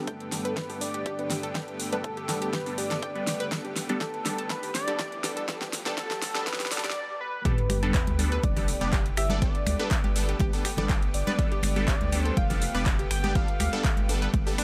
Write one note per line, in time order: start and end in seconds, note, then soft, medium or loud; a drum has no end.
0.00 6.92 G2 medium
0.00 6.92 D3 medium
0.00 6.92 A3 medium
0.00 6.92 B3 medium
0.00 6.92 G4 medium
0.00 riser medium
0.07 0.58 A4 medium
0.07 0.12 G5 medium
0.07 kick loud
0.07 closed hi-hat soft
0.20 closed hi-hat soft
0.32 0.54 G3 medium
0.32 0.54 B3 medium
0.32 0.54 D4 medium
0.32 0.54 A4 medium
0.32 snare soft
0.32 open hi-hat loud
0.45 0.49 B4 loud
0.45 closed hi-hat soft
0.57 0.81 B4 loud
0.57 kick loud
0.57 snare soft
0.57 closed hi-hat soft
0.70 0.82 G3 medium
0.70 0.82 B3 medium
0.70 0.82 D4 medium
0.70 0.76 G4 medium
0.70 0.82 A4 loud
0.70 open hi-hat medium
0.81 1.51 D5 loud
0.81 open hi-hat loud
0.94 1.04 G4 medium
0.94 closed hi-hat medium
1.06 1.13 G4 loud
1.06 kick loud
1.06 closed hi-hat soft
1.19 1.32 G3 medium
1.19 1.32 B3 medium
1.19 1.32 D4 medium
1.19 1.32 B4 loud
1.19 closed hi-hat soft
1.30 1.37 G4 medium
1.30 snare medium
1.30 open hi-hat loud
1.43 1.53 A4 medium
1.43 closed hi-hat soft
1.55 1.69 G3 medium
1.55 1.69 B3 medium
1.55 1.69 D4 medium
1.55 1.69 A4 medium
1.55 1.59 G5 medium
1.55 kick loud
1.55 snare medium
1.55 closed hi-hat medium
1.68 closed hi-hat soft
1.80 open hi-hat loud
1.93 2.05 G3 loud
1.93 2.05 B3 medium
1.93 2.05 D4 medium
1.93 2.05 A4 loud
1.93 1.96 B4 medium
1.93 closed hi-hat medium
2.04 2.55 A4 medium
2.04 kick loud
2.04 closed hi-hat soft
2.17 2.23 G4 medium
2.17 closed hi-hat soft
2.29 2.50 G3 medium
2.29 2.50 B3 medium
2.29 2.50 D4 medium
2.29 2.50 A4 medium
2.29 snare medium
2.29 open hi-hat loud
2.42 2.51 G4 medium
2.42 closed hi-hat soft
2.53 2.60 G4 loud
2.53 2.79 B4 loud
2.53 kick loud
2.53 snare medium
2.53 closed hi-hat medium
2.66 2.79 G3 medium
2.66 2.79 B3 medium
2.66 2.79 D4 medium
2.66 2.79 A4 loud
2.66 open hi-hat medium
2.78 2.85 G4 medium
2.78 3.52 D5 loud
2.78 open hi-hat loud
2.91 3.00 A4 medium
2.91 snare medium
2.91 closed hi-hat medium
3.03 3.07 G5 medium
3.03 kick loud
3.03 closed hi-hat medium
3.16 3.28 G3 medium
3.16 3.28 B3 medium
3.16 3.28 D4 medium
3.16 3.28 B4 loud
3.16 closed hi-hat soft
3.27 snare medium
3.27 open hi-hat loud
3.40 3.44 B4 loud
3.40 closed hi-hat soft
3.52 3.66 G3 medium
3.52 3.66 B3 medium
3.52 3.66 D4 medium
3.52 3.66 A4 medium
3.52 kick loud
3.52 snare medium
3.52 closed hi-hat soft
3.65 3.71 G4 medium
3.65 closed hi-hat soft
3.76 snare medium
3.76 open hi-hat loud
3.89 4.02 G3 medium
3.89 4.02 B3 medium
3.89 4.02 D4 medium
3.89 3.99 G4 medium
3.89 4.02 A4 medium
3.89 closed hi-hat medium
4.01 4.08 G4 medium
4.01 4.52 A4 medium
4.01 kick loud
4.01 snare medium
4.01 closed hi-hat soft
4.14 closed hi-hat soft
4.25 4.47 G3 medium
4.25 4.47 B3 medium
4.25 4.47 D4 medium
4.25 4.33 G4 medium
4.25 4.47 A4 medium
4.25 snare medium
4.25 open hi-hat loud
4.38 4.48 A4 medium
4.38 closed hi-hat medium
4.50 4.64 G3 medium
4.50 4.64 B3 medium
4.50 4.64 D4 medium
4.50 4.64 A4 medium
4.50 4.74 B4 loud
4.50 kick loud
4.50 snare medium
4.50 closed hi-hat soft
4.63 4.69 G4 medium
4.63 open hi-hat medium
4.75 5.44 D5 loud
4.75 snare medium
4.75 open hi-hat loud
4.88 5.00 G3 loud
4.88 5.00 B3 medium
4.88 5.00 D4 medium
4.88 4.97 G4 medium
4.88 5.00 A4 loud
4.88 closed hi-hat medium
4.99 5.06 G4 medium
4.99 kick loud
4.99 snare medium
4.99 closed hi-hat medium
5.12 closed hi-hat soft
5.24 5.45 G3 medium
5.24 5.45 B3 medium
5.24 5.45 D4 medium
5.24 5.31 G4 medium
5.24 5.45 A4 medium
5.24 snare medium
5.24 open hi-hat loud
5.37 5.46 A4 medium
5.37 closed hi-hat soft
5.48 5.62 G3 medium
5.48 5.62 B3 medium
5.48 5.62 D4 medium
5.48 5.62 A4 medium
5.48 kick loud
5.48 snare medium
5.48 closed hi-hat medium
5.61 5.68 G4 medium
5.61 snare medium
5.61 closed hi-hat soft
5.73 snare medium
5.73 open hi-hat loud
5.86 5.96 G3 loud
5.86 5.96 B3 medium
5.86 5.96 D4 medium
5.86 5.95 G4 medium
5.86 5.96 A4 loud
5.86 snare medium
5.86 closed hi-hat medium
5.98 6.12 G3 medium
5.98 6.12 B3 medium
5.98 6.12 A4 medium
5.98 6.48 A4 medium
5.98 kick loud
5.98 snare medium
5.98 closed hi-hat soft
6.11 6.17 G4 medium
6.11 snare medium
6.11 closed hi-hat soft
6.22 snare loud
6.22 open hi-hat loud
6.35 6.45 G3 medium
6.35 6.45 B3 medium
6.35 6.45 D4 medium
6.35 6.45 G4 medium
6.35 6.45 A4 loud
6.35 snare medium
6.35 closed hi-hat soft
6.47 6.61 G3 medium
6.47 6.61 B3 medium
6.47 6.61 D4 medium
6.47 6.61 A4 medium
6.47 6.73 B4 loud
6.47 kick loud
6.47 snare loud
6.47 closed hi-hat medium
6.53 snare medium
6.60 6.66 G4 medium
6.60 snare medium
6.60 open hi-hat medium
6.66 snare medium
6.71 6.85 G3 medium
6.71 6.85 B3 medium
6.71 6.85 D4 medium
6.71 6.85 A4 medium
6.71 7.20 D5 loud
6.71 snare loud
6.71 open hi-hat loud
6.78 snare medium
6.84 6.91 G4 medium
6.84 snare medium
6.84 closed hi-hat medium
6.90 snare loud
7.21 7.90 B4 loud
7.45 7.59 G3 medium
7.45 14.64 A3 medium
7.45 14.64 B3 medium
7.45 7.59 B3 medium
7.45 7.59 D4 medium
7.45 14.64 G4 medium
7.45 7.52 G4 loud
7.45 7.59 A4 loud
7.45 kick loud
7.45 closed hi-hat medium
7.45 sub drop medium
7.58 closed hi-hat soft
7.70 8.01 G1 medium
7.70 7.77 G4 medium
7.70 finger snap medium
7.70 open hi-hat loud
7.70 high conga medium
7.83 7.96 G3 loud
7.83 7.96 B3 medium
7.83 7.96 D4 medium
7.83 7.92 A4 medium
7.83 7.96 A4 loud
7.83 closed hi-hat soft
7.94 8.45 B4 loud
7.94 7.99 G5 medium
7.94 kick loud
7.94 clap loud
7.94 closed hi-hat medium
8.07 8.38 D2 loud
8.07 closed hi-hat soft
8.07 high conga medium
8.19 8.41 G3 medium
8.19 8.41 B3 medium
8.19 8.41 D4 medium
8.19 8.41 A4 medium
8.19 open hi-hat loud
8.32 8.36 B4 loud
8.32 closed hi-hat soft
8.43 8.75 F1 loud
8.43 8.93 D5 loud
8.43 kick loud
8.43 closed hi-hat medium
8.43 high conga medium
8.56 8.69 G3 loud
8.56 8.69 B3 medium
8.56 8.69 D4 medium
8.56 8.63 G4 medium
8.56 8.69 A4 loud
8.56 open hi-hat medium
8.56 low conga medium
8.68 open hi-hat loud
8.81 9.12 F1 loud
8.81 9.02 G3 loud
8.81 9.02 B3 medium
8.81 9.02 D4 medium
8.81 8.91 G4 medium
8.81 9.02 D5 loud
8.81 closed hi-hat soft
8.81 high conga medium
8.93 9.00 G4 loud
8.93 kick loud
8.93 clap loud
8.93 closed hi-hat medium
9.06 closed hi-hat soft
9.17 9.49 G1 loud
9.17 9.24 G4 medium
9.17 9.40 E5 loud
9.17 finger snap medium
9.17 open hi-hat loud
9.30 9.39 G3 medium
9.30 9.39 B3 medium
9.30 9.39 D4 medium
9.30 9.40 A4 medium
9.30 9.39 D5 loud
9.30 closed hi-hat soft
9.30 high conga loud
9.42 9.56 G3 medium
9.42 9.56 B3 medium
9.42 9.56 D4 medium
9.42 9.56 A4 loud
9.42 10.12 D5 loud
9.42 9.46 G5 medium
9.42 kick loud
9.42 closed hi-hat medium
9.55 closed hi-hat soft
9.67 9.76 D2 medium
9.67 finger snap medium
9.67 open hi-hat loud
9.67 high conga loud
9.79 9.92 G3 loud
9.79 9.92 B3 medium
9.79 9.92 D4 medium
9.79 9.92 A4 loud
9.79 9.83 B4 medium
9.79 closed hi-hat soft
9.91 kick loud
9.91 clap loud
9.91 closed hi-hat medium
10.04 10.35 G1 medium
10.04 10.10 G4 medium
10.04 closed hi-hat soft
10.04 high conga medium
10.16 10.37 G3 medium
10.16 10.37 B3 medium
10.16 10.37 D4 medium
10.16 10.37 A4 medium
10.16 open hi-hat loud
10.29 10.38 G4 medium
10.29 closed hi-hat soft
10.40 10.49 G1 medium
10.40 10.47 G4 loud
10.40 kick loud
10.40 closed hi-hat medium
10.40 high conga loud
10.53 10.66 G3 loud
10.53 10.66 B3 medium
10.53 10.66 D4 medium
10.53 10.66 A4 loud
10.53 open hi-hat medium
10.65 10.72 G4 medium
10.65 finger snap medium
10.65 open hi-hat loud
10.77 11.09 G1 medium
10.77 10.99 G3 loud
10.77 10.99 B3 medium
10.77 10.99 D4 medium
10.77 10.87 A4 medium
10.77 10.99 D5 loud
10.77 closed hi-hat soft
10.77 high conga medium
10.77 low conga loud
10.89 10.94 G5 medium
10.89 kick loud
10.89 clap loud
10.89 closed hi-hat medium
11.02 closed hi-hat soft
11.14 11.23 G1 medium
11.14 11.84 D5 loud
11.14 open hi-hat loud
11.27 11.36 G3 medium
11.27 11.36 B3 medium
11.27 11.36 D4 medium
11.27 11.31 B4 loud
11.27 11.36 D5 loud
11.27 closed hi-hat soft
11.27 high conga medium
11.39 11.53 G3 medium
11.39 11.53 B3 medium
11.39 11.53 A4 loud
11.39 kick loud
11.39 closed hi-hat medium
11.52 11.58 G4 medium
11.52 closed hi-hat soft
11.63 11.95 G1 medium
11.63 finger snap medium
11.63 open hi-hat loud
11.63 high conga loud
11.76 11.89 G3 loud
11.76 11.89 B3 medium
11.76 11.89 D4 medium
11.76 11.86 G4 medium
11.76 11.89 A4 loud
11.76 closed hi-hat soft
11.88 11.95 G4 loud
11.88 12.25 D5 loud
11.88 kick loud
11.88 clap loud
11.88 closed hi-hat medium
12.01 12.32 D2 loud
12.01 closed hi-hat soft
12.01 high conga medium
12.12 12.34 G3 medium
12.12 12.34 B3 medium
12.12 12.34 D4 medium
12.12 12.19 G4 medium
12.12 12.34 A4 medium
12.12 open hi-hat loud
12.25 12.35 A4 medium
12.25 12.38 C5 loud
12.25 12.39 C5 loud
12.25 closed hi-hat soft
12.37 12.68 F1 loud
12.37 12.86 F5 loud
12.37 12.41 G5 medium
12.37 kick loud
12.37 closed hi-hat medium
12.37 high conga loud
12.50 12.63 G3 loud
12.50 12.63 B3 medium
12.50 12.63 D4 medium
12.50 12.63 A4 loud
12.50 open hi-hat medium
12.50 low conga medium
12.62 open hi-hat loud
12.75 13.05 F1 medium
12.75 12.96 G3 loud
12.75 12.96 B3 medium
12.75 12.96 D4 medium
12.75 12.78 B4 loud
12.75 12.96 D5 loud
12.75 closed hi-hat soft
12.75 high conga medium
12.86 kick loud
12.86 clap loud
12.86 closed hi-hat medium
12.99 13.05 G4 medium
12.99 closed hi-hat soft
13.11 13.42 G1 loud
13.11 13.37 G5 loud
13.11 finger snap medium
13.11 open hi-hat loud
13.24 13.33 G3 medium
13.24 13.33 B3 medium
13.24 13.33 D4 medium
13.24 13.33 G4 medium
13.24 13.33 D5 loud
13.24 closed hi-hat soft
13.24 high conga medium
13.35 13.49 G3 medium
13.35 13.49 B3 medium
13.35 13.49 D4 medium
13.35 13.42 G4 medium
13.35 13.49 A4 loud
13.35 14.09 F5 loud
13.35 kick loud
13.35 closed hi-hat medium
13.48 closed hi-hat soft
13.60 13.69 D2 loud
13.60 13.67 G4 medium
13.60 finger snap medium
13.60 open hi-hat loud
13.60 high conga medium
13.73 13.86 G3 loud
13.73 13.86 B3 medium
13.73 13.86 D4 medium
13.73 13.82 A4 medium
13.73 13.86 A4 loud
13.73 closed hi-hat soft
13.85 13.89 G5 medium
13.85 kick loud
13.85 clap loud
13.85 closed hi-hat medium
13.97 14.28 G1 medium
13.97 closed hi-hat soft
13.97 high conga medium
14.09 14.31 G3 medium
14.09 14.31 B3 medium
14.09 14.31 D4 medium
14.09 14.31 A4 medium
14.09 open hi-hat loud
14.22 14.26 B4 loud
14.22 closed hi-hat soft
14.34 14.43 G1 medium
14.34 kick loud
14.34 closed hi-hat medium
14.34 high conga medium
14.47 14.56 G3 loud
14.47 14.56 B3 medium
14.47 14.56 D4 medium
14.47 14.53 G4 medium
14.47 14.56 A4 loud
14.47 open hi-hat medium
14.58 14.64 G3 medium
14.58 14.64 B3 medium
14.58 14.64 D4 loud
14.58 14.64 D4 medium
14.58 14.64 B4 medium
14.58 finger snap medium
14.58 open hi-hat loud